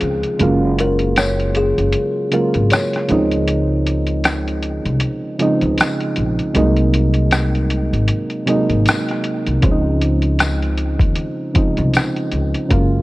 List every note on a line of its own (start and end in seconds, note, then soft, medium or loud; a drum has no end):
0.00 0.22 C#2 medium
0.00 0.33 C#3 medium
0.00 0.34 F3 medium
0.00 0.34 G#3 medium
0.00 0.35 C4 medium
0.00 0.35 F4 medium
0.00 0.37 G#4 medium
0.00 closed hi-hat medium
0.23 closed hi-hat soft
0.39 1.73 F#1 loud
0.39 1.86 C#3 medium
0.39 1.86 F#3 medium
0.39 1.86 G#3 medium
0.39 1.87 A#3 medium
0.39 1.87 F4 loud
0.39 closed hi-hat medium
0.79 1.14 A#4 medium
0.79 closed hi-hat medium
0.99 closed hi-hat soft
1.16 1.53 C#5 medium
1.16 cross-stick loud
1.16 closed hi-hat medium
1.16 tambourine medium
1.40 closed hi-hat soft
1.55 1.91 G#4 medium
1.55 closed hi-hat medium
1.78 1.93 F#1 medium
1.78 closed hi-hat soft
1.93 closed hi-hat medium
2.31 3.07 C#3 medium
2.31 3.09 F#3 medium
2.31 3.09 G#3 medium
2.31 3.10 A#3 medium
2.31 3.10 F4 medium
2.31 2.53 A#4 medium
2.31 closed hi-hat medium
2.54 2.70 G#1 medium
2.54 closed hi-hat soft
2.70 3.06 C#5 medium
2.70 cross-stick loud
2.70 closed hi-hat medium
2.70 tambourine medium
2.93 cross-stick soft
2.93 closed hi-hat soft
3.08 4.81 C#2 loud
3.08 4.55 C#3 medium
3.08 4.55 F3 medium
3.08 4.56 G#3 medium
3.08 4.56 C4 medium
3.08 4.57 D#4 loud
3.08 closed hi-hat medium
3.31 closed hi-hat soft
3.48 closed hi-hat medium
3.86 closed hi-hat medium
4.07 closed hi-hat soft
4.24 cross-stick loud
4.24 closed hi-hat medium
4.24 tambourine medium
4.48 closed hi-hat soft
4.63 closed hi-hat medium
4.86 5.01 C2 medium
4.86 closed hi-hat soft
5.00 closed hi-hat medium
5.39 6.49 C#3 medium
5.39 6.49 F3 medium
5.39 6.50 G#3 medium
5.39 6.50 C4 medium
5.39 6.51 D#4 loud
5.39 closed hi-hat medium
5.61 5.78 C#2 medium
5.61 closed hi-hat soft
5.78 cross-stick loud
5.78 closed hi-hat medium
5.78 tambourine medium
6.00 closed hi-hat soft
6.16 6.38 A#1 medium
6.16 closed hi-hat medium
6.39 closed hi-hat soft
6.54 7.89 C2 loud
6.54 8.01 C3 loud
6.54 8.01 F#3 medium
6.54 8.01 G#3 medium
6.54 8.02 A#3 medium
6.54 8.03 D#4 loud
6.54 closed hi-hat medium
6.76 closed hi-hat soft
6.94 closed hi-hat medium
7.14 closed hi-hat soft
7.31 cross-stick loud
7.31 closed hi-hat medium
7.31 tambourine medium
7.55 closed hi-hat soft
7.70 closed hi-hat medium
7.93 8.08 G#1 medium
7.93 closed hi-hat soft
8.08 closed hi-hat medium
8.30 closed hi-hat soft
8.46 9.56 C3 medium
8.46 9.57 F#3 medium
8.46 9.57 G#3 medium
8.46 9.58 A#3 medium
8.46 9.58 D#4 medium
8.46 closed hi-hat medium
8.70 8.85 G#1 medium
8.70 closed hi-hat soft
8.86 cross-stick loud
8.86 closed hi-hat medium
8.86 tambourine medium
9.08 cross-stick soft
9.08 closed hi-hat soft
9.24 closed hi-hat medium
9.46 9.62 C2 medium
9.46 closed hi-hat medium
9.61 10.96 C#2 loud
9.61 11.08 C#3 medium
9.61 11.09 F3 medium
9.61 11.09 G#3 medium
9.61 11.10 C4 medium
9.61 9.71 C#4 medium
9.61 kick loud
9.61 closed hi-hat medium
9.71 11.13 D#4 medium
10.01 closed hi-hat medium
10.22 closed hi-hat soft
10.39 cross-stick loud
10.39 closed hi-hat medium
10.39 tambourine medium
10.62 closed hi-hat soft
10.78 closed hi-hat medium
10.99 11.16 D#2 medium
10.99 kick medium
10.99 closed hi-hat soft
11.15 closed hi-hat medium
11.54 12.64 C#3 medium
11.54 12.65 F3 medium
11.54 12.65 G#3 medium
11.54 12.65 C4 medium
11.54 12.66 D#4 medium
11.54 kick medium
11.54 closed hi-hat medium
11.77 11.93 C2 medium
11.77 closed hi-hat soft
11.94 cross-stick loud
11.94 closed hi-hat medium
11.94 tambourine medium
12.16 closed hi-hat soft
12.32 12.53 C#2 medium
12.32 closed hi-hat medium
12.54 closed hi-hat soft
12.69 13.02 F#1 loud
12.69 13.02 C#3 medium
12.69 13.02 F#3 medium
12.69 13.02 G#3 medium
12.69 13.02 A#3 medium
12.69 13.02 F4 loud
12.69 kick loud
12.69 closed hi-hat medium